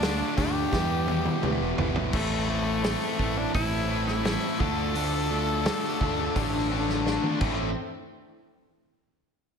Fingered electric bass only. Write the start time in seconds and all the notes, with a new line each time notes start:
Already playing: D2
0.38 D2
0.73 E2
1.43 D2
1.61 E1
1.78 G1
1.96 A1
2.14 A1
3.20 A1
3.55 A1
4.60 D2
6.01 D2
6.36 A1
7.41 A1